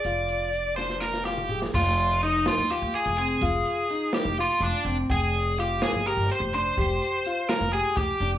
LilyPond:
<<
  \new Staff \with { instrumentName = "Lead electric guitar" } { \time 7/8 \key f \dorian \tempo 4 = 125 d''4. c''8 bes'8 g'8. r16 | f'4 ees'8 f'8 g'8 aes'8 aes'8~ | aes'4. g'8 f'8 d'8. r16 | aes'4 g'8 aes'8 bes'8 c''8 c''8~ |
c''4. bes'8 aes'8 g'8. r16 | }
  \new Staff \with { instrumentName = "Grand piano" } { \time 7/8 \key f \dorian f'4 r8 d'4 f'8 aes'8 | f'4 ees'4 f'4 c'8 | f'4 ees'4 f'4 c'8 | g''4 f'4 g'4 d'8 |
g'4 f'4 g'4 d'8 | }
  \new Staff \with { instrumentName = "Upright bass" } { \clef bass \time 7/8 \key f \dorian f,,2.~ f,,8 | f,,4.~ f,,16 ees,8 ees,16 r16 f,,8. | f,,8 r4 r16 f,,8 r16 f,,16 r16 f,,8 | f,,4.~ f,,16 g,,8 g,,16 r16 f,,8. |
f,,8 r4 r16 f,,8 r16 f,,16 r16 f,,8 | }
  \new DrumStaff \with { instrumentName = "Drums" } \drummode { \time 7/8 hh8 hh8 hh8 sn16 sn16 sn16 sn16 sn16 toml16 tomfh16 sn16 | <cymc bd>8 hh8 hh8 <hh sn>8 hh8 hh8 hh8 | <hh bd>8 hh8 hh8 <hh sn>8 hh8 hh8 hh8 | <hh bd>8 hh8 hh8 <hh sn>8 hh8 hh8 hh8 |
<hh bd>8 hh8 hh8 <hh sn>8 hh8 <hh bd sn>8 hh8 | }
>>